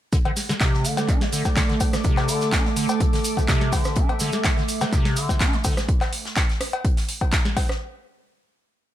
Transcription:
0.12 acid bass D3, ambient pad A3, kick, closed hi-hat, cabasa
0.24 acid bass D3, ambient pad A4, closed hi-hat, cowbell
0.36 snare, closed hi-hat, open hi-hat, cabasa
0.42 ambient pad D5
0.49 acid bass D3, snare, closed hi-hat, cabasa
0.61 acid bass C3, kick, snare, clap, closed hi-hat, cowbell, cabasa
0.66 ambient pad D6
0.74 snare
0.84 acid bass D3, closed hi-hat, open hi-hat, cabasa
0.97 snare, closed hi-hat, cowbell, cabasa
1.08 acid bass D4, kick, clap, closed hi-hat, cabasa
1.21 acid bass E3, snare, closed hi-hat
1.32 acid bass D3, closed hi-hat, open hi-hat, cabasa
1.45 kick, snare, cowbell, cabasa
1.56 acid bass D3, kick, snare, clap, closed hi-hat, cabasa
1.69 acid bass D3, snare, closed hi-hat
1.80 kick, closed hi-hat, open hi-hat, cowbell, cabasa
1.93 acid bass D3, cross-stick, snare, closed hi-hat, cabasa
2.04 acid bass C3, kick, closed hi-hat, cabasa
2.17 snare, clap, closed hi-hat, cowbell
2.28 acid bass D3, closed hi-hat, open hi-hat, cabasa
2.41 snare, closed hi-hat, cabasa
2.52 acid bass D4, kick, snare, clap, closed hi-hat, cowbell, cabasa
2.65 acid bass E3, snare
2.76 acid bass D3, closed hi-hat, open hi-hat, cabasa
2.80 ambient pad E5
2.89 closed hi-hat, cowbell, cabasa
3.00 acid bass D3, kick, closed hi-hat, cabasa
3.13 acid bass D3, snare, open hi-hat
3.24 closed hi-hat, open hi-hat, cabasa
3.37 acid bass D3, kick, closed hi-hat, cowbell, cabasa
3.48 acid bass C3, kick, snare, clap, closed hi-hat, cabasa
3.61 snare, closed hi-hat
3.72 acid bass D3, kick, snare, closed hi-hat, open hi-hat, cowbell, cabasa
3.85 cross-stick, snare, closed hi-hat, cabasa
3.95 acid bass D4, kick, closed hi-hat, cabasa
4.09 acid bass E3, closed hi-hat, cowbell
4.20 acid bass D3, snare, closed hi-hat, open hi-hat, cabasa
4.32 snare, closed hi-hat, cabasa
4.44 acid bass D3, kick, snare, clap, closed hi-hat, cowbell, cabasa
4.57 acid bass D3, snare
4.68 closed hi-hat, open hi-hat, cabasa
4.81 acid bass D3, snare, closed hi-hat, cowbell, cabasa
4.92 acid bass C3, kick, clap, closed hi-hat, cabasa
5.05 snare, closed hi-hat
5.16 acid bass D3, closed hi-hat, open hi-hat, cabasa
5.29 kick, snare, cowbell, cabasa
5.40 acid bass D4, kick, snare, clap, closed hi-hat, cabasa
5.53 acid bass E3, snare, closed hi-hat
5.64 acid bass D3, kick, closed hi-hat, open hi-hat, cowbell, cabasa
5.77 cross-stick, snare, closed hi-hat, cabasa
5.88 kick, closed hi-hat
6.01 snare, clap, closed hi-hat, cowbell
6.13 closed hi-hat, open hi-hat
6.25 snare, closed hi-hat
6.36 kick, snare, clap, closed hi-hat, cowbell
6.49 snare, closed hi-hat
6.61 cross-stick, closed hi-hat, open hi-hat
6.73 closed hi-hat, cowbell
6.85 kick, closed hi-hat
6.97 snare, open hi-hat
7.09 closed hi-hat, open hi-hat
7.21 kick, closed hi-hat, cowbell
7.32 kick, snare, clap, closed hi-hat
7.45 snare, closed hi-hat
7.57 kick, snare, closed hi-hat, open hi-hat, cowbell
7.69 cross-stick, snare, closed hi-hat

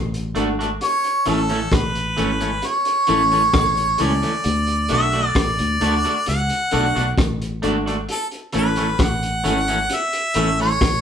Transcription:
Already playing: fingered electric bass A1
0.14 upright piano F#4 A4, closed hi-hat
0.35 fingered electric bass G#1, clean electric guitar A3 D4 F#4, upright piano A3 D4 F#4 A4, closed hi-hat
0.59 clean electric guitar A3 D4 F#4, closed hi-hat
0.81 harmonica C#5, closed hi-hat
1.04 closed hi-hat
1.26 fingered electric bass A1, clean electric guitar E3 A3 C#4, upright piano A3 C#4 E4 A4, harmonica A4, closed hi-hat
1.49 clean electric guitar E3 A3 C#4, closed hi-hat
1.72 fingered electric bass A1, harmonica B4, kick, cross-stick, closed hi-hat
1.95 closed hi-hat
2.17 fingered electric bass G#1, clean electric guitar E3 A3 C#4, upright piano A3 C#4 E4 A4, closed hi-hat
2.41 clean electric guitar E3 A3 C#4, closed hi-hat
2.62 harmonica C#5, closed hi-hat
2.85 closed hi-hat
3.07 fingered electric bass A1, clean electric guitar E3 A3 C#4, upright piano A3 C#4 E4 A4, closed hi-hat
3.32 clean electric guitar E3 A3 C#4, closed hi-hat
3.53 fingered electric bass A1, kick, cross-stick, closed hi-hat
3.77 upright piano E4 A4, closed hi-hat
3.98 fingered electric bass C#2, clean electric guitar E3 A3 C#4, upright piano A3 C#4 E4 A4, harmonica D5, closed hi-hat
4.22 clean electric guitar E3 A3 C#4, closed hi-hat
4.44 fingered electric bass D2, closed hi-hat
4.67 closed hi-hat
4.89 fingered electric bass B1, upright piano A3 D4 F#4 A4, clean electric guitar A3 D4 F#4, closed hi-hat
4.93 harmonica E5
5.12 clean electric guitar A3 D4 F#4, closed hi-hat
5.27 harmonica D5
5.35 fingered electric bass A1, harmonica D5, kick, cross-stick, closed hi-hat
5.59 fingered electric bass D2, closed hi-hat
5.80 fingered electric bass D2, upright piano A3 D4 F#4 A4, clean electric guitar A3 D4 F#4, closed hi-hat
6.04 clean electric guitar A3 D4 F#4, closed hi-hat
6.26 fingered electric bass C#2, harmonica F#5, closed hi-hat
6.50 closed hi-hat
6.71 fingered electric bass B1, upright piano A3 D4 F#4 A4, clean electric guitar A3 D4 F#4, closed hi-hat
6.95 fingered electric bass B1, clean electric guitar A3 D4 F#4, closed hi-hat
7.18 fingered electric bass A1, kick, cross-stick, closed hi-hat
7.41 upright piano F#4 A4, closed hi-hat
7.62 fingered electric bass G#1, clean electric guitar A3 D4 F#4, upright piano A3 D4 F#4 A4, closed hi-hat
7.86 clean electric guitar A3 D4 F#4, closed hi-hat
8.09 harmonica A4, closed hi-hat
8.31 closed hi-hat
8.53 fingered electric bass A1, clean electric guitar E3 A3 C#4, upright piano A3 C#4 E4 A4, closed hi-hat
8.58 harmonica B4
8.76 clean electric guitar E3 A3 C#4, closed hi-hat
8.99 fingered electric bass A1, harmonica F#5, kick, cross-stick, closed hi-hat
9.23 closed hi-hat
9.44 fingered electric bass G#1, clean electric guitar E3 A3 C#4, upright piano A3 C#4 E4 A4, closed hi-hat
9.68 clean electric guitar E3 A3 C#4, closed hi-hat
9.90 closed hi-hat
9.94 harmonica E5
10.13 closed hi-hat
10.34 fingered electric bass A1, clean electric guitar E3 A3 C#4, upright piano A3 C#4 E4 A4, closed hi-hat
10.59 clean electric guitar E3 A3 C#4, harmonica C#5, closed hi-hat
10.81 fingered electric bass A1, kick, cross-stick, closed hi-hat

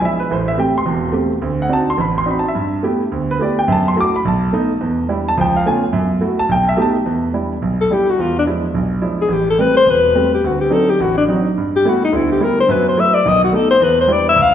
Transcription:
0.00 grand piano F3 G#3 D4 E4
0.05 grand piano E5
0.20 grand piano B4
0.31 grand piano A1 A2 C5
0.48 grand piano E5
0.58 grand piano A3 C4 G4 G5
0.78 grand piano C6
0.86 grand piano E1 E2
1.12 grand piano A3 C4 G4
1.42 grand piano D2
1.62 grand piano F#5
1.69 grand piano C4 D4 D#4 F#4
1.73 grand piano A5
1.90 grand piano C6
1.98 grand piano A1 B5
2.18 grand piano C6
2.26 grand piano C4 D4 D#4 F#4
2.30 grand piano B5
2.39 grand piano A5
2.48 grand piano E5
2.55 grand piano G2
2.83 grand piano A3 B3 E4 G4
3.12 grand piano D2
3.31 grand piano B4
3.40 grand piano A3 B3 E4 G4 D5
3.59 grand piano G5
3.68 grand piano F#2
3.72 grand piano A5
3.88 grand piano C6
3.96 grand piano A3 E4 F#4
4.01 grand piano D6
4.16 grand piano B5
4.25 grand piano B1 A5
4.53 grand piano A3 B3 D#4
4.81 grand piano E2
5.09 grand piano G3 D4 E4
5.28 grand piano A5
5.38 grand piano C#2 F3 G5
5.56 grand piano F5
5.66 grand piano A3 B3 C#4 F4 G#5
5.93 grand piano F#2
6.21 grand piano A3 E4 F#4
6.39 grand piano A5
6.49 grand piano B1 G5
6.69 grand piano E5
6.77 grand piano A3 B3 D#4 G4
6.82 grand piano A5
7.06 grand piano E2
7.34 grand piano G3 D4 E4
7.62 grand piano B1
7.81 alto saxophone A4
7.91 grand piano G3 D4 E4, alto saxophone G4
8.10 alto saxophone F#4
8.19 grand piano E2, alto saxophone F4
8.39 alto saxophone D4
8.46 grand piano F3 G#3 D4 E4
8.74 grand piano B1
9.01 grand piano F3 G#3 D4 E4
9.22 alto saxophone G#4
9.28 grand piano A1
9.33 alto saxophone G4
9.50 alto saxophone A4
9.59 grand piano G3 A3 C4, alto saxophone B4
9.77 alto saxophone C5
9.86 grand piano E1, alto saxophone B4
10.15 grand piano G3 A3 C4
10.34 alto saxophone G4
10.44 grand piano D2, alto saxophone F#4
10.61 alto saxophone G4
10.70 grand piano F#3 C4 D4 D#4, alto saxophone A4
10.90 alto saxophone G4
11.00 grand piano A1, alto saxophone F#4
11.18 alto saxophone D4
11.28 grand piano F#3 C4 D4 D#4
11.58 grand piano G2
11.76 alto saxophone G4
11.85 grand piano G3 A3 B3 E4, alto saxophone F#4
12.05 alto saxophone D#4
12.12 grand piano D2 D3, alto saxophone E4
12.32 alto saxophone G4
12.40 grand piano G3 A3 B3 E4, alto saxophone A#4
12.61 alto saxophone C5
12.69 grand piano F#2 F#3, alto saxophone B4
12.89 alto saxophone C5
12.97 grand piano F#3 A3 E4, alto saxophone E5
13.14 alto saxophone D5
13.26 grand piano B1 D#3, alto saxophone D#5
13.44 alto saxophone F#4
13.53 grand piano A3 B3 D#4, alto saxophone A4
13.71 alto saxophone C5
13.80 grand piano E2, alto saxophone B4
14.01 alto saxophone C5
14.08 grand piano G3 D4 E4
14.13 alto saxophone D5
14.29 alto saxophone E5
14.36 grand piano C#2
14.42 alto saxophone F5

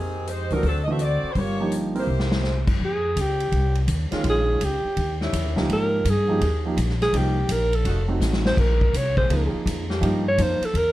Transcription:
Already playing: upright bass F2, saxophone section D#3 C4 G4 G#4
0.27 saxophone section G#3 D#4 G4 C5, closed hi-hat
0.50 upright bass C#2, grand piano E3 A3 D4 F#4, saxophone section G3 C4 D#4 A#4, open hi-hat
0.63 upright bass D2, saxophone section F#3 C4 D4 A4, kick, open hi-hat
0.83 saxophone section D#5
0.87 grand piano E3 A3 D4 F#4, saxophone section C4 F#4 A4 E5
0.99 saxophone section C4 F#4 A4 D5, closed hi-hat
1.23 muted upright bass stroke
1.32 upright bass G1, saxophone section C5, kick, open hi-hat
1.37 saxophone section A#3 F4 G4 C#5
1.60 grand piano F3 A#3 D#4 G4
1.72 closed hi-hat
1.95 grand piano A#3 C4 E4 A#4, saxophone section A#3, open hi-hat
1.99 saxophone section E4 G4 C5
2.07 upright bass C2
2.20 snare
2.32 snare
2.44 snare
2.67 upright bass F#2, kick, crash
2.80 upright bass F2, kick
2.85 alto saxophone G#4
3.16 upright bass C#2, kick, hi-hat pedal, ride
3.20 alto saxophone G4
3.40 ride
3.52 upright bass C2, kick, ride
3.75 ride
3.87 upright bass D#2, kick, hi-hat pedal, ride
4.11 saxophone section C#3 G#3 A#3 F4, grand piano D#3 G#3 C#4 F4, muted upright bass stroke, snare, ride
4.24 upright bass A#1, kick, ride
4.30 alto saxophone G#4
4.60 upright bass C#2, kick, hi-hat pedal, ride
4.65 alto saxophone G4
4.84 muted upright bass stroke
4.97 upright bass D#2, kick, ride
5.21 saxophone section D#3 G3 C#4 E4, snare
5.33 upright bass E2, kick, hi-hat pedal, ride
5.44 upright bass D#2
5.56 upright bass C#2, grand piano F3 A#3 D#4 G4, snare
5.68 upright bass G#2, kick, ride
5.73 alto saxophone A#4
6.05 upright bass G2, kick, hi-hat pedal, ride
6.10 alto saxophone G#4
6.28 grand piano F3 A#3 D#4 G4
6.41 upright bass D#2, saxophone section C3 G#3 A#3 G4, kick, ride
6.65 grand piano F3 A#3 D#4 G4
6.77 upright bass A#1, kick, hi-hat pedal, ride
6.89 snare
7.02 alto saxophone G#4, snare, ride
7.13 upright bass C2, saxophone section D#3 A#3 C4 G4, grand piano F3 A#3 D#4 G4, kick, ride
7.17 alto saxophone G4
7.48 upright bass A#1, alto saxophone A#4, kick, hi-hat pedal, ride
7.73 alto saxophone A4, ride
7.85 upright bass F1, saxophone section F3 A3 D#4 F#4, kick, ride
8.08 grand piano A3 C4 D#4 F#4
8.20 upright bass A1, snare, hi-hat pedal
8.33 snare
8.45 alto saxophone C5, snare
8.57 upright bass A#1, alto saxophone A#4, kick, crash
8.81 kick
8.93 upright bass C2, alto saxophone C#5, kick, hi-hat pedal, ride
9.17 saxophone section C#3 A#3 C4 G#4, alto saxophone C5, kick
9.29 upright bass C#2, grand piano F3 A#3 D#4 G#4, kick, ride
9.54 muted upright bass stroke
9.66 upright bass F2, kick, hi-hat pedal, ride
9.89 saxophone section F3 A#3 C#4 G4, snare
10.01 upright bass G2, grand piano F3 A#3 D#4 G4, kick, ride
10.28 alto saxophone C#5
10.38 upright bass F2, grand piano F3 A#3 D#4 F4, kick, hi-hat pedal, ride
10.42 alto saxophone C5
10.61 muted upright bass stroke, ride
10.65 alto saxophone A4
10.73 upright bass E2, kick, ride
10.78 alto saxophone A#4

